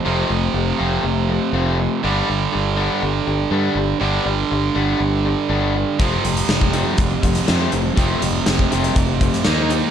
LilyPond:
<<
  \new Staff \with { instrumentName = "Overdriven electric guitar" } { \time 4/4 \key f \lydian \tempo 4 = 121 <f a c'>8 <f a>8 <f a>8 <f a c'>8 <f a>8 <f a>8 <f a c'>8 <f a>8 | <g b d'>8 <g d'>8 <g d'>8 <g b d'>8 <g d'>8 <g d'>8 <g b d'>8 <g d'>8 | <g b d'>8 <g d'>8 <g d'>8 <g b d'>8 <g d'>8 <g d'>8 <g b d'>8 <g d'>8 | <f a c'>8 <f a>8 <f a>8 <f a c'>8 <f a>8 <f a>8 <f a c'>8 <f a>8 |
<f a c'>8 <f a>8 <f a>8 <f a c'>8 <f a>8 <f a>8 <ees bes ees'>8 <ees bes>8 | }
  \new Staff \with { instrumentName = "Distorted electric guitar" } { \clef bass \time 4/4 \key f \lydian <f, c f>1 | <g, d g>1 | <g, d g>1 | <f, c f>1 |
<f, c f>2. <ees bes ees'>4 | }
  \new Staff \with { instrumentName = "Fingered electric bass" } { \clef bass \time 4/4 \key f \lydian f,,8 f,,8 f,,8 f,,8 f,,4 f,,4 | g,,8 g,,8 g,,4 g,,8 g,,8 g,8 g,,8 | g,,8 g,,8 g,,8 g,,8 g,,4 g,,4 | f,,8 f,,8 f,,4 f,,8 f,,8 f,8 f,,8 |
f,,8 f,,8 f,,8 f,,8 f,,4 ees,4 | }
  \new DrumStaff \with { instrumentName = "Drums" } \drummode { \time 4/4 r4 r4 r4 r4 | r4 r4 r4 r4 | r4 r4 r4 r4 | <hh bd>8 hh16 hh16 <hh sn>16 bd16 hh8 <hh bd>8 <hh bd>16 <hh sn>16 <hh sn>8 hh8 |
<hh bd>8 hh8 <hh sn>16 bd16 hh16 hh16 <hh bd>8 <hh bd>16 <hh sn>16 <hh sn>8 hh8 | }
>>